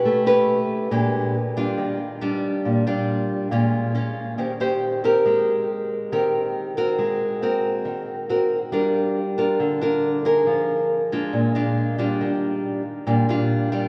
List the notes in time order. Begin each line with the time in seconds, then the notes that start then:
Already playing: C#4 G4 B4
0.05 A3
0.26 C#4 G4 B4
0.91 A#2 G#3 D4 G4
1.57 G3 D4 F4
1.78 D#3
2.21 G3 D4 F4
2.65 A#2
2.87 G3 D4 F4
3.51 A#2 G#3 C#4 F4
3.95 G#3 C#4 F4
4.38 D#3 C#4 G4 C5
4.60 C#4 G4 C5
5.04 C4 G4 A#4
5.26 G#3
6.12 D#3 C4 G4 A#4
6.77 C4 F#4 A#4
6.99 G#3
7.42 C4 F#4 A#4
7.85 D#3
8.29 C4 F#4 A#4
8.72 G3 D4 F4 A#4
9.38 D4 F4 A#4
9.60 D3
9.81 D4 F4 A#4
10.25 D#4 G#4 A#4
10.47 F3
11.12 G#3 D4 F4
11.33 A#2
11.55 G#3 D4 F4
11.98 G3 D4 F4
12.21 D#3
13.07 A#2 G3 D4 F4
13.29 G3 D4 F4
13.72 G3 D4 F4